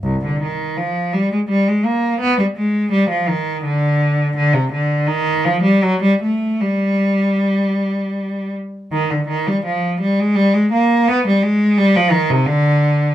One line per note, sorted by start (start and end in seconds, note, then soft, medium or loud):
0.03 0.22 C2 medium
0.25 0.43 D3 soft
0.43 0.79 D#3 soft
0.77 1.14 F3 medium
1.13 1.32 G3 medium
1.32 1.40 G#3 medium
1.49 1.67 G3 medium
1.68 1.86 G#3 medium
1.85 2.21 A#3 medium
2.21 2.38 B3 medium
2.39 2.46 G3 medium
2.56 2.91 G#3 medium
2.92 3.10 G3 medium
3.10 3.28 F3 medium
3.28 3.64 D#3 medium
3.64 4.34 D3 medium
4.37 4.54 D3 medium
4.54 4.72 C3 medium
4.72 5.07 D3 medium
5.07 5.44 D#3 medium
5.45 5.63 F3 medium
5.63 5.81 G3 medium
5.84 6.01 F#3 medium
6.02 6.20 G3 medium
6.22 6.59 A3 medium
6.61 8.53 G3 medium
8.92 9.08 D#3 medium
9.10 9.27 D3 medium
9.28 9.45 D#3 medium
9.47 9.63 G3 medium
9.66 9.99 F3 medium
10.01 10.17 G3 medium
10.20 10.36 G#3 medium
10.35 10.52 G3 medium
10.54 10.70 G#3 medium
10.72 11.05 A#3 medium
11.08 11.24 B3 medium
11.27 11.42 G3 medium
11.43 11.76 G#3 medium
11.78 11.94 G3 medium
11.96 12.12 F3 medium
12.11 12.28 D#3 medium
12.30 12.47 C3 medium
12.46 13.15 D3 medium